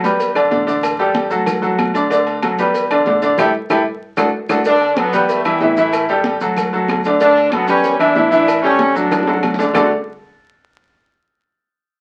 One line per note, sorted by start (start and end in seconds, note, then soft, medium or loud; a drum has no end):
0.04 0.48 E2 medium
0.04 0.30 G3 medium
0.04 0.30 G4 medium
0.04 0.30 B4 medium
0.04 cowbell medium
0.04 high conga soft
0.04 low agogo medium
0.04 maracas medium
0.19 cowbell loud
0.19 high conga soft
0.19 low agogo medium
0.19 maracas medium
0.35 0.49 D3 medium
0.35 0.49 D4 medium
0.35 0.49 D5 medium
0.35 high conga soft
0.35 low agogo loud
0.35 claves medium
0.35 maracas soft
0.51 1.26 A1 medium
0.51 0.64 D3 medium
0.51 0.64 D4 medium
0.51 0.64 D5 medium
0.51 cowbell medium
0.51 high conga medium
0.51 maracas soft
0.67 0.93 D3 medium
0.67 0.93 D4 medium
0.67 0.94 D5 medium
0.67 cowbell medium
0.67 high conga soft
0.67 maracas medium
0.83 cowbell loud
0.83 high conga soft
0.83 low agogo loud
0.83 claves medium
0.83 maracas medium
0.99 1.25 G3 medium
0.99 1.26 G4 medium
0.99 1.26 A4 medium
0.99 cowbell medium
0.99 high conga soft
0.99 maracas soft
1.15 cowbell medium
1.15 high conga loud
1.15 low agogo medium
1.15 maracas soft
1.30 1.75 D2 medium
1.30 1.57 F#3 medium
1.30 1.57 F#4 medium
1.30 1.57 A4 medium
1.30 high conga soft
1.30 maracas medium
1.46 cowbell loud
1.46 high conga soft
1.46 low conga medium
1.46 low agogo loud
1.46 claves medium
1.46 maracas medium
1.62 1.88 F#3 medium
1.62 1.89 F#4 medium
1.62 1.89 A4 medium
1.62 high conga soft
1.62 low conga medium
1.62 maracas soft
1.79 2.53 D2 loud
1.79 cowbell medium
1.79 high conga medium
1.79 low agogo loud
1.79 claves medium
1.79 maracas soft
1.94 2.07 D3 medium
1.94 2.08 D4 medium
1.94 2.08 D5 medium
1.94 high conga soft
1.94 low agogo medium
1.94 maracas medium
2.10 2.37 D3 medium
2.10 2.37 D4 medium
2.10 2.37 D5 medium
2.10 cowbell loud
2.10 high conga soft
2.10 low agogo medium
2.10 maracas medium
2.27 high conga soft
2.27 low agogo medium
2.27 maracas soft
2.43 2.56 F#3 medium
2.43 2.56 F#4 medium
2.43 2.56 A4 medium
2.43 cowbell medium
2.43 high conga medium
2.43 low agogo loud
2.43 claves medium
2.43 maracas soft
2.58 3.03 E2 medium
2.58 2.85 G3 medium
2.58 2.85 G4 medium
2.58 2.85 B4 medium
2.58 cowbell medium
2.58 high conga soft
2.58 low agogo medium
2.58 maracas medium
2.74 cowbell loud
2.74 high conga soft
2.74 low agogo medium
2.74 maracas medium
2.90 3.04 D3 medium
2.90 3.04 D4 medium
2.90 3.04 D5 medium
2.90 high conga soft
2.90 low agogo loud
2.90 claves medium
2.90 maracas soft
3.06 3.36 A1 loud
3.06 3.20 D3 medium
3.06 3.20 D4 medium
3.06 3.20 D5 medium
3.06 cowbell medium
3.06 high conga medium
3.06 low timbale medium
3.06 maracas soft
3.22 3.35 D3 medium
3.22 3.35 D4 medium
3.22 3.36 D5 loud
3.22 cowbell medium
3.22 high conga soft
3.22 maracas medium
3.38 3.50 A1 medium
3.38 3.49 E4 loud
3.38 3.49 G4 loud
3.38 3.49 A4 loud
3.38 cowbell loud
3.38 low conga loud
3.38 high timbale loud
3.38 claves loud
3.38 maracas loud
3.70 3.82 A1 loud
3.70 3.80 E4 loud
3.70 3.80 G4 medium
3.70 3.80 A4 medium
3.70 cowbell loud
3.70 low conga loud
3.70 high timbale loud
3.70 claves loud
3.70 maracas medium
4.17 4.30 D2 medium
4.17 4.28 D4 medium
4.17 4.28 F#4 loud
4.17 4.28 A4 medium
4.17 cowbell loud
4.17 low conga loud
4.17 high timbale loud
4.17 claves loud
4.17 maracas loud
4.49 4.61 D2 loud
4.49 4.60 D4 loud
4.49 4.60 F#4 medium
4.49 4.60 A4 medium
4.49 cowbell loud
4.49 low conga loud
4.49 high timbale loud
4.49 claves loud
4.49 maracas loud
4.65 4.92 D3 medium
4.65 4.95 D4 loud
4.65 4.92 D4 medium
4.65 4.93 D5 medium
4.65 cowbell loud
4.65 high conga soft
4.65 low agogo medium
4.65 maracas medium
4.81 high conga soft
4.81 low agogo medium
4.81 maracas soft
4.97 5.11 F#3 medium
4.97 5.30 B3 loud
4.97 5.11 F#4 medium
4.97 5.11 A4 medium
4.97 cowbell medium
4.97 high conga loud
4.97 low agogo loud
4.97 claves medium
4.97 maracas soft
5.13 5.58 E2 loud
5.13 5.39 G3 medium
5.13 5.40 G4 medium
5.13 5.40 B4 medium
5.13 cowbell medium
5.13 high conga soft
5.13 low agogo medium
5.13 maracas medium
5.29 5.46 A3 loud
5.29 cowbell loud
5.29 high conga soft
5.29 low agogo medium
5.29 maracas medium
5.45 5.58 E3 medium
5.45 5.75 G3 medium
5.45 5.58 E4 medium
5.45 5.59 E5 medium
5.45 high conga soft
5.45 low agogo loud
5.45 claves medium
5.45 maracas soft
5.61 6.36 A1 medium
5.61 5.74 E3 medium
5.61 5.75 E4 medium
5.61 5.75 E5 medium
5.61 cowbell medium
5.61 high conga medium
5.61 low timbale medium
5.61 maracas soft
5.77 6.04 E3 medium
5.77 6.09 A3 medium
5.77 6.04 E4 medium
5.77 6.04 E5 medium
5.77 cowbell medium
5.77 high conga soft
5.77 maracas medium
5.93 cowbell loud
5.93 high conga soft
5.93 low agogo loud
5.93 claves medium
5.93 maracas loud
6.08 6.35 G3 medium
6.08 6.36 G4 medium
6.08 6.36 A4 medium
6.08 cowbell medium
6.08 high conga soft
6.08 maracas soft
6.24 cowbell medium
6.24 high conga loud
6.24 low agogo medium
6.24 maracas soft
6.41 6.86 D2 loud
6.41 6.67 F#3 medium
6.41 6.67 F#4 medium
6.41 6.68 A4 medium
6.41 high conga soft
6.41 maracas medium
6.56 cowbell loud
6.56 high conga soft
6.56 low conga medium
6.56 low agogo loud
6.56 claves medium
6.56 maracas medium
6.73 6.99 F#3 medium
6.73 6.99 F#4 medium
6.73 6.99 A4 medium
6.73 high conga soft
6.73 maracas soft
6.88 7.63 D2 medium
6.88 cowbell medium
6.88 high conga medium
6.88 low timbale medium
6.88 low agogo loud
6.88 claves medium
6.88 maracas soft
7.04 7.18 D3 medium
7.04 7.19 D4 medium
7.04 7.19 D5 medium
7.04 high conga soft
7.04 low agogo medium
7.04 maracas medium
7.20 7.47 D3 medium
7.20 7.50 D4 loud
7.20 7.47 D4 loud
7.20 7.47 D5 loud
7.20 cowbell loud
7.20 high conga soft
7.20 low agogo medium
7.20 maracas medium
7.36 high conga soft
7.36 low agogo medium
7.36 maracas soft
7.52 7.66 F#3 medium
7.52 7.69 B3 loud
7.52 7.66 F#4 medium
7.52 7.66 A4 medium
7.52 cowbell medium
7.52 high conga medium
7.52 low agogo loud
7.52 claves medium
7.52 maracas soft
7.67 8.13 E2 medium
7.67 7.95 G3 medium
7.67 7.98 C#4 loud
7.67 7.95 G4 medium
7.67 7.95 B4 medium
7.67 cowbell medium
7.67 high conga soft
7.67 low agogo medium
7.67 maracas medium
7.84 cowbell loud
7.84 high conga soft
7.84 low agogo medium
7.84 maracas medium
7.99 8.13 E3 medium
7.99 8.29 D4 loud
7.99 8.13 E4 medium
7.99 8.13 E5 medium
7.99 high conga soft
7.99 low agogo loud
7.99 claves medium
7.99 maracas soft
8.15 8.90 A1 loud
8.15 8.29 E3 medium
8.15 8.29 E4 medium
8.15 8.29 E5 medium
8.15 cowbell medium
8.15 high conga medium
8.15 maracas soft
8.31 8.58 E3 loud
8.31 8.61 D4 loud
8.31 8.58 E4 medium
8.31 8.58 E5 medium
8.31 cowbell medium
8.31 high conga soft
8.31 maracas medium
8.48 cowbell loud
8.48 high conga soft
8.48 low agogo loud
8.48 claves medium
8.48 maracas loud
8.62 8.90 G3 medium
8.62 8.93 C#4 loud
8.62 8.90 G4 medium
8.62 8.90 A4 medium
8.62 cowbell medium
8.62 high conga soft
8.62 maracas soft
8.79 cowbell medium
8.79 high conga loud
8.79 low agogo medium
8.79 maracas soft
8.95 9.40 D2 medium
8.95 9.21 F#3 medium
8.95 9.55 D4 loud
8.95 9.22 F#4 medium
8.95 9.22 A4 medium
8.95 high conga soft
8.95 maracas medium
9.11 cowbell loud
9.11 high bongo loud
9.11 high conga soft
9.11 low conga medium
9.11 high timbale loud
9.11 low agogo loud
9.11 claves medium
9.11 maracas medium
9.23 9.53 F#3 medium
9.23 high bongo loud
9.27 9.53 F#4 medium
9.27 9.54 A4 medium
9.27 high conga soft
9.27 low timbale medium
9.27 maracas soft
9.33 high bongo medium
9.43 9.72 D2 medium
9.43 cowbell medium
9.43 high conga medium
9.43 low agogo loud
9.43 claves medium
9.43 maracas soft
9.54 low bongo medium
9.59 9.72 D3 medium
9.59 9.72 D4 medium
9.59 9.72 D5 medium
9.59 high conga soft
9.59 low timbale medium
9.59 low agogo medium
9.59 maracas medium
9.65 low bongo medium
9.73 9.91 D2 loud
9.73 9.89 D3 medium
9.73 9.89 A3 medium
9.73 9.90 D4 medium
9.73 9.90 F#4 medium
9.73 9.91 F#4 medium
9.73 9.90 A4 medium
9.73 9.90 D5 loud
9.73 low bongo loud
9.73 low conga loud
9.73 low timbale loud
9.73 claves loud
9.73 maracas medium